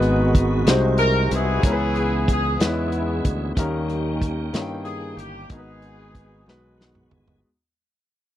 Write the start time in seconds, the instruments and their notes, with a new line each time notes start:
Already playing: fingered electric bass G#1, grand piano G#2 G#3 B3 D#4 F#4 B4, tonewheel organ D#3 G#3 B3 F#4
0.02 closed hi-hat
0.35 kick, closed hi-hat
0.64 fingered electric bass C2, tonewheel organ C3 G#3 F#4, grand piano G#3, snare, closed hi-hat
0.68 grand piano C3 C4 D#4 F#4 C5
0.98 horn section A#4, closed hi-hat
1.31 fingered electric bass C2, horn section B3 E4 G#4, closed hi-hat
1.62 fingered electric bass C#2, grand piano C#3 G#3 B3 C#4 E4, tonewheel organ E3 B3 C#4 G#4, kick, closed hi-hat
1.66 grand piano A#4
1.72 grand piano B4
1.96 closed hi-hat
2.28 horn section G#4, kick, closed hi-hat
2.60 fingered electric bass E2, grand piano G#3 B3 C#4 D#4 B4, horn section G#3 B3 E4, snare, closed hi-hat
2.68 grand piano E4
2.92 closed hi-hat
3.25 fingered electric bass D2, kick, closed hi-hat
3.55 fingered electric bass D#2, tonewheel organ D#3 A#3 C#4 G5, grand piano D#3 G3 A#3 C#4 D#4, kick, closed hi-hat
3.59 grand piano A#4
3.90 closed hi-hat
4.22 kick, closed hi-hat
4.53 fingered electric bass G2, grand piano D#3 A#3 C#4 D#4 E4, snare, closed hi-hat
4.62 grand piano G5
4.85 horn section G#4, closed hi-hat
5.17 fingered electric bass G1, horn section G4, closed hi-hat
5.48 fingered electric bass G#1, tonewheel organ D#3 G#3 A#3 F#4, grand piano G#3 B3, horn section D#4 G#4, kick, closed hi-hat
5.52 grand piano G#2 D#4 F#4 A#4, horn section B3, tonewheel organ B3
5.58 grand piano B4
5.82 closed hi-hat
6.15 kick, closed hi-hat
6.47 fingered electric bass B1, grand piano G#3 B3 D#4 F#4 B4, snare
6.78 tonewheel organ F#5, snare
6.95 mid tom
7.09 fingered electric bass G1, tonewheel organ G#5, floor tom
7.28 floor tom